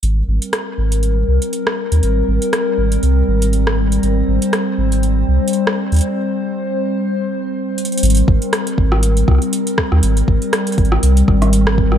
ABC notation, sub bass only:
X:1
M:4/4
L:1/16
Q:"Swing 16ths" 1/4=120
K:Ab
V:1 name="Sub bass" clef=bass
A,,,2 A,,, z3 A,,,4 C,, z4 E,, | A,,,2 A,,, z3 A,,,2 C,,2 A,,,6 | A,,,2 A,,, z3 A,,,4 C,, z4 E,, | z16 |
A,,,2 A,,, z3 A,,,4 C,, z4 E,, | A,,,2 A,,, z3 A,,,2 C,,2 A,,,6 |]